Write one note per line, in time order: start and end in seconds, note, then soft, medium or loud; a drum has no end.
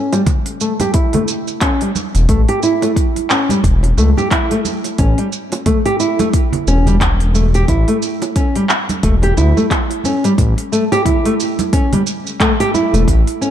0.00 0.12 C#4 medium
0.13 0.21 G3 medium
0.13 open hi-hat soft
0.13 high bongo medium
0.13 shaker soft
0.26 kick medium
0.26 open hi-hat medium
0.26 low conga medium
0.26 shaker soft
0.46 open hi-hat soft
0.61 0.72 A3 medium
0.61 shaker medium
0.80 0.94 G4 loud
0.80 open hi-hat soft
0.80 high conga medium
0.80 shaker soft
0.94 1.13 E4 medium
0.94 kick loud
0.94 open hi-hat medium
0.94 shaker soft
1.13 1.22 A3 medium
1.13 open hi-hat soft
1.13 low conga medium
1.28 shaker medium
1.48 shaker soft
1.61 1.81 C#4 medium
1.61 kick loud
1.61 clap medium
1.61 open hi-hat medium
1.61 shaker soft
1.81 1.90 G3 medium
1.81 open hi-hat soft
1.95 high conga medium
1.95 shaker medium
2.15 2.27 E1 loud
2.15 open hi-hat soft
2.15 shaker soft
2.29 2.45 A1 loud
2.29 2.40 A3 medium
2.29 kick loud
2.29 open hi-hat medium
2.29 shaker soft
2.49 2.62 G4 medium
2.49 open hi-hat soft
2.63 2.82 E4 medium
2.63 shaker medium
2.82 2.91 A3 medium
2.82 open hi-hat soft
2.82 high bongo medium
2.82 shaker soft
2.96 kick loud
2.96 open hi-hat medium
2.96 shaker soft
3.16 open hi-hat soft
3.16 high conga soft
3.30 3.49 C#4 medium
3.30 clap medium
3.30 shaker medium
3.49 3.58 G3 medium
3.49 open hi-hat soft
3.49 high conga medium
3.49 shaker soft
3.64 3.92 E1 medium
3.64 kick loud
3.64 open hi-hat medium
3.64 shaker soft
3.83 open hi-hat soft
3.83 high bongo soft
3.97 4.13 C#2 loud
3.97 4.09 A3 medium
3.97 high conga medium
3.97 shaker medium
4.17 4.31 G4 medium
4.17 high conga medium
4.17 shaker soft
4.31 4.50 E4 medium
4.31 kick loud
4.31 clap medium
4.31 open hi-hat medium
4.31 shaker soft
4.51 4.59 A3 medium
4.51 open hi-hat soft
4.51 high bongo soft
4.65 high conga medium
4.65 shaker medium
4.84 open hi-hat soft
4.84 high bongo soft
4.84 shaker soft
4.98 5.15 A1 loud
4.98 5.18 C#4 medium
4.98 kick loud
4.98 open hi-hat medium
4.98 shaker soft
5.18 5.27 G3 medium
5.18 open hi-hat soft
5.33 shaker medium
5.52 open hi-hat soft
5.52 high bongo medium
5.52 shaker soft
5.66 5.78 A3 medium
5.66 kick medium
5.66 open hi-hat medium
5.66 low conga medium
5.66 shaker soft
5.86 5.99 G4 loud
5.86 open hi-hat soft
6.00 6.19 E4 medium
6.00 shaker medium
6.19 6.28 A3 medium
6.19 open hi-hat soft
6.19 high conga medium
6.19 shaker soft
6.34 kick loud
6.34 open hi-hat medium
6.34 shaker soft
6.53 open hi-hat soft
6.53 low conga medium
6.67 7.64 E1 medium
6.67 6.86 C#4 medium
6.67 shaker medium
6.86 6.95 G3 medium
6.86 open hi-hat soft
6.86 low conga medium
6.86 shaker soft
7.01 kick loud
7.01 clap medium
7.01 open hi-hat medium
7.01 shaker soft
7.20 open hi-hat soft
7.35 7.46 A3 medium
7.35 high conga medium
7.35 shaker medium
7.54 7.68 G4 medium
7.54 open hi-hat soft
7.54 shaker soft
7.68 7.84 A1 loud
7.68 7.87 E4 medium
7.68 kick medium
7.68 open hi-hat medium
7.68 shaker soft
7.88 7.96 A3 medium
7.88 open hi-hat soft
8.02 shaker medium
8.22 open hi-hat soft
8.22 high bongo medium
8.22 shaker soft
8.36 8.55 C#4 medium
8.36 kick medium
8.36 open hi-hat medium
8.36 shaker soft
8.56 8.64 G3 medium
8.56 open hi-hat soft
8.56 high conga soft
8.69 clap medium
8.69 shaker medium
8.89 open hi-hat soft
8.89 high conga medium
8.89 shaker soft
9.03 9.32 E1 medium
9.03 9.15 A3 medium
9.03 kick loud
9.03 open hi-hat medium
9.03 shaker soft
9.22 9.37 G4 medium
9.22 open hi-hat soft
9.22 high bongo soft
9.37 9.53 D2 loud
9.37 9.56 E4 medium
9.37 high conga medium
9.37 shaker medium
9.57 9.65 A3 medium
9.57 high conga medium
9.57 shaker soft
9.71 kick loud
9.71 clap medium
9.71 open hi-hat medium
9.71 shaker soft
9.90 open hi-hat soft
9.90 high bongo soft
10.04 10.23 C#4 medium
10.04 high conga medium
10.04 shaker medium
10.24 10.32 G3 medium
10.24 open hi-hat soft
10.24 high bongo soft
10.24 shaker soft
10.38 10.54 A1 loud
10.38 kick loud
10.38 open hi-hat medium
10.38 shaker soft
10.58 open hi-hat soft
10.72 10.83 A3 medium
10.72 shaker medium
10.92 11.05 G4 medium
10.92 open hi-hat soft
10.92 high bongo medium
10.92 shaker soft
11.06 11.24 E4 medium
11.06 kick medium
11.06 open hi-hat medium
11.06 low conga medium
11.06 shaker soft
11.25 11.33 A3 medium
11.25 open hi-hat soft
11.40 shaker medium
11.59 open hi-hat soft
11.59 high conga medium
11.59 shaker soft
11.73 11.92 C#4 medium
11.73 kick loud
11.73 open hi-hat medium
11.73 shaker soft
11.93 12.01 G3 medium
11.93 open hi-hat soft
11.93 low conga medium
12.07 shaker medium
12.27 shaker soft
12.40 12.52 A3 medium
12.40 kick loud
12.40 clap medium
12.40 open hi-hat medium
12.40 shaker soft
12.60 12.73 G4 loud
12.60 open hi-hat soft
12.74 12.93 E4 medium
12.74 high conga medium
12.74 shaker medium
12.93 13.05 E1 medium
12.93 13.02 A3 medium
12.93 open hi-hat soft
12.93 shaker soft
13.08 13.24 A1 loud
13.08 kick medium
13.08 open hi-hat medium
13.08 shaker soft
13.27 open hi-hat soft
13.41 13.51 C#4 medium
13.41 shaker medium